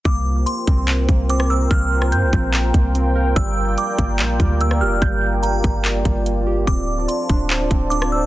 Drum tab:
HH |x---x-x-x-x-x---|x---x-x-x-x-x---|x---x-x-x-x-x---|x---x-x-x-x-x---|
CP |--------x-------|--------x-------|--------x-------|--------x-------|
SD |-------------r--|---r------------|-------------r--|----------------|
BD |o-----o---o-----|o-----o---o-----|o-----o---o-----|o-----o---o-----|

HH |x---x-x-x-x-x---|
CP |--------x-------|
SD |-------------r--|
BD |o-----o---o-----|